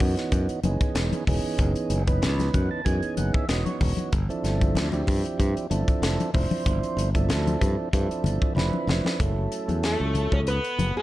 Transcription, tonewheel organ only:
0.00 0.60 E3 medium
0.00 0.60 B3 medium
0.00 0.60 C#4 medium
0.00 0.60 D#4 medium
0.00 0.60 F#4 medium
0.64 1.24 E3 medium
0.64 1.24 B3 medium
0.64 1.24 C#4 medium
0.64 1.24 D#4 medium
0.64 1.24 G#4 medium
1.28 2.03 E3 medium
1.28 2.03 B3 medium
1.28 2.03 C#4 medium
1.28 2.03 D#4 medium
1.28 2.03 G#4 medium
2.07 2.81 E3 medium
2.07 2.82 B3 medium
2.07 2.82 C#4 medium
2.07 2.82 D#4 medium
2.07 2.82 B4 medium
2.54 2.70 F#5 medium
2.71 2.85 A5 medium
2.85 3.46 E3 medium
2.85 3.45 B3 medium
2.85 3.46 C#4 medium
2.85 3.46 D#4 medium
2.85 3.46 G#4 medium
2.85 3.15 G#5 medium
3.17 3.33 F#5 medium
3.34 3.48 E5 medium
3.49 4.12 E3 medium
3.49 4.12 B3 medium
3.49 4.12 C#4 medium
3.49 4.13 D#4 medium
3.49 4.13 F#4 medium
3.49 3.65 D#5 medium
3.66 4.09 C#5 medium
4.29 4.89 F3 medium
4.29 4.89 C4 medium
4.29 4.89 D4 medium
4.29 4.89 E4 medium
4.29 4.89 A4 medium
4.93 5.67 F3 medium
4.93 5.67 C4 medium
4.93 5.67 D4 medium
4.93 5.67 E4 medium
4.93 5.67 G4 medium
5.70 6.31 F3 medium
5.70 6.31 C4 medium
5.70 6.31 D4 medium
5.70 6.31 E4 medium
5.70 6.31 A4 medium
6.34 7.10 F3 medium
6.34 7.10 C4 medium
6.34 7.10 D4 medium
6.34 7.10 E4 medium
6.34 7.10 C5 loud
7.15 7.89 F3 medium
7.15 7.89 C4 medium
7.15 7.89 D4 medium
7.15 7.89 E4 medium
7.15 7.89 A4 medium
7.93 8.53 F3 medium
7.93 8.53 C4 medium
7.93 8.53 D4 medium
7.93 8.53 E4 medium
7.93 8.53 A4 medium
8.56 9.20 F3 medium
8.56 9.20 C4 medium
8.56 9.20 D4 medium
8.56 9.19 E4 medium
8.56 9.20 B4 medium
9.20 10.40 F#3 medium
9.20 10.40 A3 medium
9.20 10.40 C#4 medium
9.20 10.40 E4 medium
9.20 10.40 A4 medium

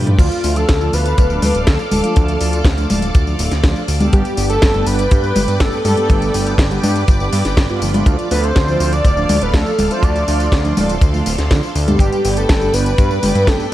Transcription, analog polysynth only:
0.00 0.41 F3 medium
0.00 0.41 A3 medium
0.00 0.41 D4 medium
0.00 0.41 F4 medium
0.44 0.62 F3 loud
0.44 0.62 A3 medium
0.44 0.62 D4 medium
0.44 0.62 F4 loud
0.81 1.10 F3 medium
0.81 1.10 A3 medium
0.81 1.10 D4 medium
0.81 1.10 F4 loud
1.30 1.48 F3 medium
1.30 1.48 A3 medium
1.30 1.48 D4 medium
1.30 1.48 F4 medium
1.67 1.85 F3 medium
1.67 1.85 A3 medium
1.67 1.85 D4 medium
1.67 1.85 F4 medium
2.04 2.38 F3 loud
2.04 2.38 A3 medium
2.04 2.38 D4 medium
2.04 2.38 F4 loud
2.41 2.59 F3 loud
2.41 2.59 A3 medium
2.41 2.59 D4 medium
2.41 2.59 F4 loud
2.77 3.06 F3 medium
2.77 3.06 A3 medium
2.77 3.06 D4 medium
2.77 3.06 F4 loud
3.27 3.45 F3 medium
3.27 3.45 A3 medium
3.27 3.45 D4 medium
3.27 3.45 F4 medium
3.64 3.82 F3 medium
3.64 3.82 A3 medium
3.64 3.82 D4 medium
3.64 3.82 F4 medium
4.00 4.34 G2 loud
4.00 4.34 G3 medium
4.00 4.34 B3 medium
4.00 4.34 D4 medium
4.00 4.34 G4 loud
4.37 4.55 G2 loud
4.37 4.55 G3 medium
4.37 4.55 B3 medium
4.37 4.55 D4 medium
4.37 4.55 G4 loud
4.74 5.03 G2 medium
4.74 5.03 G3 medium
4.74 5.03 B3 medium
4.74 5.03 D4 medium
4.74 5.03 G4 medium
5.23 5.42 G2 medium
5.23 5.42 G3 medium
5.23 5.42 B3 medium
5.23 5.42 D4 medium
5.23 5.42 G4 medium
5.60 5.78 G2 medium
5.60 5.78 G3 medium
5.60 5.78 B3 medium
5.60 5.78 D4 medium
5.60 5.78 G4 medium
5.97 6.31 G2 loud
5.97 6.31 G3 medium
5.97 6.31 B3 medium
5.97 6.31 D4 medium
5.97 6.31 G4 loud
6.34 6.52 G2 loud
6.34 6.52 G3 medium
6.34 6.52 B3 medium
6.34 6.52 D4 medium
6.34 6.52 G4 loud
6.71 7.00 G2 medium
6.71 7.00 G3 medium
6.71 7.00 B3 medium
6.71 7.00 D4 medium
6.71 7.00 G4 loud
7.20 7.38 G2 medium
7.20 7.38 G3 medium
7.20 7.38 B3 medium
7.20 7.38 D4 medium
7.20 7.38 G4 medium
7.69 7.80 G2 loud
7.69 7.80 G3 medium
7.69 7.80 B3 medium
7.69 7.80 D4 medium
7.69 7.80 F4 loud
7.82 8.28 F3 medium
7.82 8.28 A3 medium
7.82 8.28 D4 medium
7.82 8.28 F4 medium
8.31 8.49 F3 loud
8.31 8.49 A3 medium
8.31 8.49 D4 medium
8.31 8.49 F4 loud
8.68 8.97 F3 medium
8.68 8.97 A3 medium
8.68 8.97 D4 medium
8.68 8.97 F4 medium
9.17 9.35 F3 medium
9.17 9.35 A3 medium
9.17 9.35 D4 medium
9.17 9.35 F4 medium
9.54 9.72 F3 medium
9.54 9.72 A3 medium
9.54 9.72 D4 medium
9.54 9.72 F4 medium
9.91 10.25 F3 loud
9.91 10.25 A3 medium
9.91 10.25 D4 medium
9.91 10.25 F4 loud
10.28 10.46 F3 loud
10.28 10.46 A3 medium
10.28 10.46 D4 medium
10.28 10.46 F4 loud
10.64 10.93 F3 medium
10.64 10.93 A3 medium
10.64 10.93 D4 medium
10.64 10.93 F4 loud
11.14 11.32 F3 medium
11.14 11.32 A3 medium
11.14 11.32 D4 medium
11.14 11.32 F4 medium
11.51 11.69 F3 medium
11.51 11.69 A3 medium
11.51 11.69 D4 medium
11.51 11.69 F4 medium
11.88 12.21 G2 loud
11.88 12.21 G3 medium
11.88 12.21 B3 medium
11.88 12.21 D4 medium
11.88 12.21 G4 loud
12.24 12.42 G2 medium
12.24 12.42 G3 medium
12.24 12.42 B3 medium
12.24 12.42 D4 medium
12.24 12.42 G4 loud
12.61 12.90 G2 medium
12.61 12.90 G3 medium
12.61 12.90 B3 medium
12.61 12.90 D4 medium
12.61 12.90 G4 loud
13.10 13.29 G2 medium
13.10 13.29 G3 medium
13.10 13.29 B3 medium
13.10 13.28 D4 medium
13.10 13.29 G4 medium
13.47 13.65 G2 medium
13.47 13.65 G3 medium
13.47 13.65 B3 medium
13.47 13.65 D4 medium
13.47 13.65 G4 medium

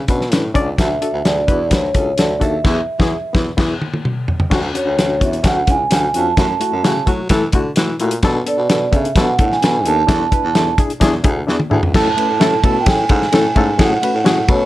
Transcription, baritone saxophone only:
0.09 0.33 B2 medium
0.32 0.50 A2 medium
0.55 0.73 C#2 medium
0.78 0.96 D2 loud
1.13 1.22 D2 medium
1.25 1.43 D2 medium
1.48 1.73 E2 medium
1.71 1.89 D2 medium
1.95 2.13 C#2 medium
2.18 2.36 D2 medium
2.41 2.59 D#2 medium
2.65 2.81 E2 loud
3.00 3.16 E2 medium
3.35 3.51 E2 medium
3.58 3.74 E2 loud
4.51 4.69 D2 loud
4.86 4.95 D2 medium
4.98 5.23 D2 medium
5.21 5.39 E2 medium
5.44 5.62 D2 loud
5.68 5.86 C#2 medium
5.91 6.09 D2 medium
6.14 6.32 F2 medium
6.38 6.55 F#2 loud
6.72 6.81 F#2 loud
6.85 7.02 C#3 medium
7.07 7.25 F#3 medium
7.30 7.48 E3 loud
7.53 7.71 D3 medium
7.77 7.95 E3 medium
8.00 8.18 A#2 medium
8.23 8.41 B2 loud
8.58 8.67 B2 medium
8.69 8.87 B2 medium
8.93 9.11 C#3 medium
9.16 9.34 B2 loud
9.39 9.57 A2 medium
9.63 9.87 B2 medium
9.85 10.03 D#2 loud
10.09 10.27 E2 loud
10.44 10.53 E2 medium
10.56 10.73 E2 medium
11.01 11.19 E2 loud
11.24 11.42 D2 medium
11.48 11.57 E2 loud
11.72 11.80 D2 loud
11.83 11.92 C#2 medium
11.94 12.12 A2 loud
12.29 12.38 A2 medium
12.40 12.58 A2 loud
12.64 12.88 B2 medium
12.87 13.04 A2 loud
13.10 13.28 G#2 loud
13.33 13.51 A2 loud
13.56 13.74 G#2 loud
13.79 13.97 A2 loud
14.14 14.23 A2 loud
14.26 14.44 A2 loud
14.49 14.65 B2 medium

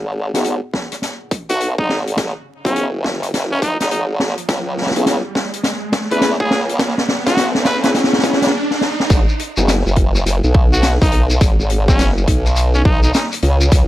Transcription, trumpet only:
1.49 1.70 F#4 medium
1.78 1.99 D#4 medium
2.65 2.86 C#4 medium
3.51 3.60 C#4 medium
3.62 3.77 D#4 medium
3.80 3.87 D#4 medium
3.91 4.03 D#4 medium
6.11 6.32 B4 loud
6.40 6.61 G#4 medium
7.27 7.47 F#4 medium
7.66 7.78 B4 medium
7.84 7.91 B4 medium
10.73 10.93 F#4 medium
11.02 11.22 D#4 loud
11.88 12.09 C#4 medium
12.75 12.83 C#4 medium
12.85 13.00 D#4 loud
13.04 13.10 D#4 medium
13.14 13.26 D#4 medium

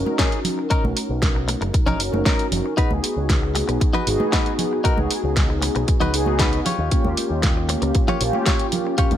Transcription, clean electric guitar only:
0.06 muted clean electric guitar stroke soft
0.19 0.38 C#4 medium
0.19 0.39 D#4 medium
0.19 0.39 G#4 medium
0.58 muted clean electric guitar stroke soft
0.70 0.84 C#4 loud
0.70 0.84 D#4 medium
0.70 0.84 A#4 loud
0.96 muted clean electric guitar stroke soft
1.35 muted clean electric guitar stroke soft
1.48 muted clean electric guitar stroke medium
1.61 muted clean electric guitar stroke medium
1.74 muted clean electric guitar stroke soft
1.86 2.00 C#4 loud
1.86 2.00 D#4 loud
1.86 2.00 A#4 loud
2.13 muted clean electric guitar stroke soft
2.25 2.45 C#4 medium
2.25 2.46 D#4 medium
2.25 2.46 A#4 medium
2.65 muted clean electric guitar stroke soft
2.77 2.91 D#4 loud
2.77 2.91 F#4 medium
2.77 2.91 B4 loud
3.03 muted clean electric guitar stroke soft
3.42 muted clean electric guitar stroke soft
3.55 muted clean electric guitar stroke medium
3.68 muted clean electric guitar stroke medium
3.80 muted clean electric guitar stroke soft
3.93 4.07 D#4 loud
3.93 4.07 F#4 loud
3.93 4.07 B4 loud
4.20 muted clean electric guitar stroke soft
4.32 4.52 D#4 medium
4.32 4.52 F#4 medium
4.32 4.53 B4 medium
4.72 muted clean electric guitar stroke soft
4.84 4.97 D#4 loud
4.84 4.98 F#4 medium
4.84 4.98 A#4 loud
5.10 muted clean electric guitar stroke soft
5.49 muted clean electric guitar stroke soft
5.62 muted clean electric guitar stroke medium
5.75 muted clean electric guitar stroke medium
5.87 muted clean electric guitar stroke soft
6.00 6.14 D#4 loud
6.00 6.14 F#4 loud
6.00 6.14 B4 loud
6.26 muted clean electric guitar stroke soft
6.39 6.59 D#4 medium
6.39 6.59 F#4 medium
6.39 6.60 B4 medium
6.65 7.07 F4 medium
6.65 7.07 G4 medium
6.65 7.08 C#5 medium
7.17 muted clean electric guitar stroke soft
7.56 muted clean electric guitar stroke soft
7.69 muted clean electric guitar stroke medium
7.82 muted clean electric guitar stroke medium
7.95 muted clean electric guitar stroke soft
8.08 8.21 F4 loud
8.08 8.21 G4 loud
8.08 8.21 C#5 loud
8.34 muted clean electric guitar stroke soft
8.46 8.66 F4 medium
8.46 8.66 G4 medium
8.46 8.67 C#5 medium
8.85 muted clean electric guitar stroke soft
8.98 9.11 F4 loud
8.98 9.12 G4 medium
8.98 9.12 C#5 medium

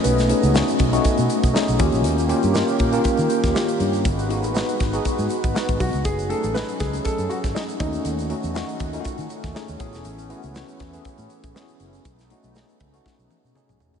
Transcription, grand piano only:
0.04 1.75 B3 medium
5.80 6.03 F#4 medium
6.05 6.31 G#4 loud
6.30 6.56 A4 medium
6.54 6.81 B4 medium
6.80 7.06 G#4 medium
7.05 7.31 A4 medium
7.29 7.35 F#4 medium
7.55 7.60 D#4 medium
7.80 9.26 D#4 medium

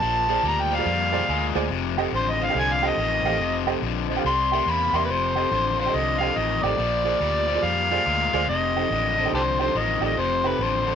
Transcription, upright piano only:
0.29 0.37 F4 medium
0.29 0.37 G#4 medium
0.29 0.37 C5 medium
0.29 0.38 D5 medium
0.70 0.75 C5 soft
0.70 0.76 D5 soft
0.78 0.87 F4 medium
0.78 0.87 G#4 medium
0.78 0.87 C5 medium
0.78 0.87 D5 medium
1.12 1.21 F4 medium
1.12 1.21 G#4 medium
1.12 1.21 C5 medium
1.12 1.21 D5 medium
1.29 1.69 G#5 medium
1.55 1.63 F4 medium
1.55 1.63 G#4 medium
1.55 1.63 C5 medium
1.55 1.64 D5 loud
1.98 2.06 G4 medium
1.98 2.06 A4 medium
1.98 2.06 C5 medium
1.98 2.06 D#5 loud
2.40 2.44 C5 soft
2.40 2.45 F5 soft
2.50 2.57 G4 medium
2.50 2.57 A4 medium
2.50 2.57 C5 medium
2.50 2.57 D#5 medium
2.83 2.90 G4 medium
2.83 2.91 A4 medium
2.83 2.91 C5 medium
2.83 2.91 D#5 medium
3.25 3.33 G4 medium
3.25 3.33 A4 medium
3.25 3.33 C5 medium
3.25 3.33 F5 medium
3.67 3.75 G4 medium
3.67 3.75 A4 medium
3.67 3.75 C5 medium
3.67 3.75 D#5 medium
4.09 4.13 C5 medium
4.09 4.14 D#5 medium
4.17 4.25 G4 medium
4.17 4.25 A4 medium
4.17 4.25 C5 medium
4.17 4.26 F5 medium
4.52 4.60 G4 medium
4.52 4.60 A#4 medium
4.52 4.60 D5 medium
4.52 4.60 E5 medium
4.94 5.02 G4 medium
4.94 5.02 A#4 medium
4.94 5.02 D5 medium
4.94 5.03 E5 medium
5.35 5.44 G4 medium
5.35 5.44 A4 medium
5.35 5.44 C5 medium
5.35 5.44 D#5 medium
5.77 5.82 C5 soft
5.77 5.83 F5 soft
5.86 5.94 G4 medium
5.86 5.94 A4 medium
5.86 5.95 C5 medium
5.86 5.95 D#5 medium
6.20 6.28 G4 medium
6.20 6.29 A4 medium
6.20 6.29 C5 medium
6.20 6.29 D#5 medium
6.64 6.71 G4 medium
6.64 6.71 A4 medium
6.64 6.72 C5 medium
6.64 6.72 D#5 medium
7.05 7.13 F4 medium
7.05 7.13 G#4 medium
7.05 7.13 C5 medium
7.05 7.14 D5 medium
7.47 7.52 C5 medium
7.47 7.53 D5 medium
7.55 7.63 F4 medium
7.55 7.64 G#4 soft
7.55 7.64 C5 medium
7.55 7.64 D5 medium
7.91 7.98 F4 medium
7.91 7.99 G#4 medium
7.91 7.99 C5 medium
7.91 7.99 D5 medium
8.33 8.41 F4 medium
8.33 8.41 G#4 medium
8.33 8.41 C5 medium
8.33 8.41 D5 medium
8.76 8.83 D#4 medium
8.76 8.84 G4 medium
8.76 8.84 A4 medium
8.76 8.84 C5 medium
9.19 9.22 A4 soft
9.19 9.23 C5 soft
9.25 9.33 D#4 medium
9.25 9.33 G4 medium
9.25 9.34 A4 medium
9.25 9.34 C5 medium
9.59 9.67 D#4 medium
9.59 9.68 G4 medium
9.59 9.68 A4 medium
9.59 9.68 C5 medium
10.01 10.09 D#4 medium
10.01 10.10 G4 medium
10.01 10.10 A4 medium
10.01 10.10 D5 medium
10.44 10.52 D#4 medium
10.44 10.52 G4 medium
10.44 10.53 A4 medium
10.44 10.53 C5 medium
10.87 10.91 A4 soft
10.87 10.92 C5 soft

